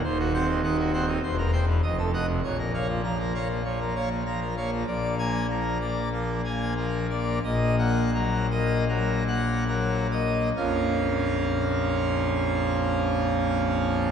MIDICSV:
0, 0, Header, 1, 2, 480
1, 0, Start_track
1, 0, Key_signature, -5, "minor"
1, 0, Tempo, 591716
1, 38, Time_signature, 4, 2, 24, 8
1, 1478, Tempo, 612245
1, 4358, Tempo, 638298
1, 5318, Tempo, 685714
1, 6278, Tempo, 740741
1, 6758, Tempo, 804290
1, 7238, Tempo, 894188
1, 9613, End_track
2, 0, Start_track
2, 0, Title_t, "Pipe organ"
2, 0, Program_c, 0, 19
2, 34, Note_on_c, 0, 27, 108
2, 34, Note_on_c, 0, 39, 100
2, 35, Note_on_c, 0, 72, 85
2, 143, Note_off_c, 0, 72, 0
2, 155, Note_on_c, 0, 66, 85
2, 263, Note_off_c, 0, 66, 0
2, 274, Note_on_c, 0, 60, 77
2, 275, Note_on_c, 0, 78, 112
2, 277, Note_on_c, 0, 72, 81
2, 377, Note_off_c, 0, 78, 0
2, 378, Note_off_c, 0, 72, 0
2, 394, Note_on_c, 0, 51, 81
2, 488, Note_off_c, 0, 60, 0
2, 498, Note_off_c, 0, 51, 0
2, 515, Note_on_c, 0, 51, 76
2, 515, Note_on_c, 0, 78, 86
2, 622, Note_off_c, 0, 78, 0
2, 641, Note_on_c, 0, 66, 75
2, 728, Note_off_c, 0, 51, 0
2, 745, Note_off_c, 0, 66, 0
2, 758, Note_on_c, 0, 60, 68
2, 758, Note_on_c, 0, 72, 72
2, 758, Note_on_c, 0, 78, 83
2, 858, Note_off_c, 0, 72, 0
2, 858, Note_off_c, 0, 78, 0
2, 878, Note_on_c, 0, 51, 80
2, 960, Note_off_c, 0, 60, 0
2, 963, Note_off_c, 0, 27, 0
2, 964, Note_off_c, 0, 39, 0
2, 978, Note_off_c, 0, 51, 0
2, 998, Note_on_c, 0, 28, 98
2, 999, Note_on_c, 0, 40, 95
2, 1000, Note_on_c, 0, 72, 77
2, 1105, Note_off_c, 0, 72, 0
2, 1119, Note_on_c, 0, 70, 79
2, 1225, Note_off_c, 0, 70, 0
2, 1237, Note_on_c, 0, 79, 103
2, 1238, Note_on_c, 0, 72, 78
2, 1339, Note_off_c, 0, 79, 0
2, 1340, Note_off_c, 0, 72, 0
2, 1359, Note_on_c, 0, 52, 77
2, 1462, Note_off_c, 0, 52, 0
2, 1466, Note_off_c, 0, 28, 0
2, 1466, Note_off_c, 0, 40, 0
2, 1480, Note_on_c, 0, 41, 91
2, 1481, Note_on_c, 0, 29, 84
2, 1482, Note_on_c, 0, 75, 84
2, 1586, Note_off_c, 0, 75, 0
2, 1600, Note_on_c, 0, 69, 62
2, 1705, Note_off_c, 0, 69, 0
2, 1723, Note_on_c, 0, 75, 65
2, 1724, Note_on_c, 0, 78, 91
2, 1821, Note_off_c, 0, 75, 0
2, 1822, Note_off_c, 0, 78, 0
2, 1837, Note_on_c, 0, 48, 64
2, 1938, Note_off_c, 0, 48, 0
2, 1941, Note_off_c, 0, 29, 0
2, 1941, Note_off_c, 0, 41, 0
2, 1958, Note_on_c, 0, 73, 69
2, 1959, Note_on_c, 0, 34, 70
2, 1959, Note_on_c, 0, 46, 83
2, 2063, Note_off_c, 0, 73, 0
2, 2078, Note_on_c, 0, 70, 65
2, 2184, Note_off_c, 0, 70, 0
2, 2196, Note_on_c, 0, 58, 61
2, 2196, Note_on_c, 0, 73, 58
2, 2199, Note_on_c, 0, 77, 60
2, 2297, Note_off_c, 0, 73, 0
2, 2299, Note_off_c, 0, 77, 0
2, 2315, Note_on_c, 0, 53, 61
2, 2409, Note_off_c, 0, 58, 0
2, 2414, Note_off_c, 0, 53, 0
2, 2430, Note_on_c, 0, 53, 59
2, 2431, Note_on_c, 0, 82, 89
2, 2539, Note_off_c, 0, 82, 0
2, 2554, Note_on_c, 0, 70, 54
2, 2645, Note_off_c, 0, 53, 0
2, 2660, Note_off_c, 0, 70, 0
2, 2670, Note_on_c, 0, 58, 57
2, 2672, Note_on_c, 0, 73, 52
2, 2672, Note_on_c, 0, 77, 62
2, 2774, Note_off_c, 0, 73, 0
2, 2774, Note_off_c, 0, 77, 0
2, 2791, Note_on_c, 0, 53, 56
2, 2885, Note_off_c, 0, 58, 0
2, 2896, Note_off_c, 0, 53, 0
2, 2910, Note_on_c, 0, 73, 65
2, 2912, Note_on_c, 0, 53, 55
2, 3019, Note_off_c, 0, 73, 0
2, 3034, Note_on_c, 0, 70, 52
2, 3127, Note_off_c, 0, 53, 0
2, 3141, Note_off_c, 0, 70, 0
2, 3148, Note_on_c, 0, 58, 55
2, 3150, Note_on_c, 0, 73, 57
2, 3152, Note_on_c, 0, 77, 60
2, 3253, Note_off_c, 0, 73, 0
2, 3254, Note_off_c, 0, 77, 0
2, 3266, Note_on_c, 0, 53, 59
2, 3364, Note_off_c, 0, 58, 0
2, 3371, Note_off_c, 0, 53, 0
2, 3386, Note_on_c, 0, 53, 57
2, 3387, Note_on_c, 0, 82, 67
2, 3496, Note_off_c, 0, 82, 0
2, 3508, Note_on_c, 0, 70, 58
2, 3604, Note_off_c, 0, 53, 0
2, 3618, Note_off_c, 0, 70, 0
2, 3632, Note_on_c, 0, 77, 57
2, 3633, Note_on_c, 0, 58, 55
2, 3633, Note_on_c, 0, 73, 50
2, 3736, Note_off_c, 0, 73, 0
2, 3736, Note_off_c, 0, 77, 0
2, 3758, Note_on_c, 0, 53, 56
2, 3838, Note_off_c, 0, 58, 0
2, 3845, Note_off_c, 0, 34, 0
2, 3845, Note_off_c, 0, 46, 0
2, 3858, Note_off_c, 0, 53, 0
2, 3868, Note_on_c, 0, 46, 80
2, 3870, Note_on_c, 0, 34, 76
2, 3871, Note_on_c, 0, 74, 71
2, 4087, Note_off_c, 0, 74, 0
2, 4114, Note_on_c, 0, 58, 67
2, 4115, Note_on_c, 0, 80, 93
2, 4331, Note_off_c, 0, 58, 0
2, 4331, Note_off_c, 0, 80, 0
2, 4361, Note_on_c, 0, 53, 55
2, 4363, Note_on_c, 0, 70, 67
2, 4570, Note_off_c, 0, 53, 0
2, 4571, Note_off_c, 0, 70, 0
2, 4593, Note_on_c, 0, 74, 63
2, 4594, Note_on_c, 0, 58, 59
2, 4806, Note_off_c, 0, 58, 0
2, 4806, Note_off_c, 0, 74, 0
2, 4829, Note_on_c, 0, 53, 58
2, 4833, Note_on_c, 0, 70, 65
2, 5046, Note_off_c, 0, 53, 0
2, 5048, Note_off_c, 0, 70, 0
2, 5071, Note_on_c, 0, 80, 69
2, 5072, Note_on_c, 0, 58, 67
2, 5290, Note_off_c, 0, 80, 0
2, 5291, Note_off_c, 0, 58, 0
2, 5314, Note_on_c, 0, 70, 79
2, 5315, Note_on_c, 0, 53, 68
2, 5522, Note_off_c, 0, 70, 0
2, 5523, Note_off_c, 0, 53, 0
2, 5547, Note_on_c, 0, 58, 72
2, 5548, Note_on_c, 0, 74, 72
2, 5749, Note_off_c, 0, 58, 0
2, 5750, Note_off_c, 0, 74, 0
2, 5755, Note_off_c, 0, 46, 0
2, 5756, Note_off_c, 0, 34, 0
2, 5782, Note_on_c, 0, 46, 94
2, 5783, Note_on_c, 0, 75, 83
2, 5784, Note_on_c, 0, 34, 85
2, 6001, Note_off_c, 0, 75, 0
2, 6028, Note_on_c, 0, 58, 74
2, 6028, Note_on_c, 0, 78, 106
2, 6250, Note_off_c, 0, 58, 0
2, 6250, Note_off_c, 0, 78, 0
2, 6277, Note_on_c, 0, 54, 75
2, 6277, Note_on_c, 0, 70, 81
2, 6488, Note_off_c, 0, 54, 0
2, 6488, Note_off_c, 0, 70, 0
2, 6516, Note_on_c, 0, 75, 91
2, 6517, Note_on_c, 0, 58, 82
2, 6733, Note_off_c, 0, 75, 0
2, 6734, Note_off_c, 0, 58, 0
2, 6758, Note_on_c, 0, 54, 71
2, 6758, Note_on_c, 0, 70, 94
2, 6967, Note_off_c, 0, 54, 0
2, 6967, Note_off_c, 0, 70, 0
2, 6990, Note_on_c, 0, 58, 75
2, 6992, Note_on_c, 0, 78, 88
2, 7210, Note_off_c, 0, 58, 0
2, 7211, Note_off_c, 0, 78, 0
2, 7234, Note_on_c, 0, 70, 88
2, 7235, Note_on_c, 0, 54, 80
2, 7442, Note_off_c, 0, 70, 0
2, 7443, Note_off_c, 0, 54, 0
2, 7466, Note_on_c, 0, 75, 73
2, 7467, Note_on_c, 0, 58, 69
2, 7670, Note_off_c, 0, 75, 0
2, 7671, Note_off_c, 0, 58, 0
2, 7685, Note_off_c, 0, 34, 0
2, 7685, Note_off_c, 0, 46, 0
2, 7707, Note_on_c, 0, 34, 70
2, 7707, Note_on_c, 0, 58, 57
2, 7707, Note_on_c, 0, 61, 63
2, 7709, Note_on_c, 0, 41, 56
2, 7709, Note_on_c, 0, 53, 58
2, 7709, Note_on_c, 0, 65, 60
2, 9613, Note_off_c, 0, 34, 0
2, 9613, Note_off_c, 0, 41, 0
2, 9613, Note_off_c, 0, 53, 0
2, 9613, Note_off_c, 0, 58, 0
2, 9613, Note_off_c, 0, 61, 0
2, 9613, Note_off_c, 0, 65, 0
2, 9613, End_track
0, 0, End_of_file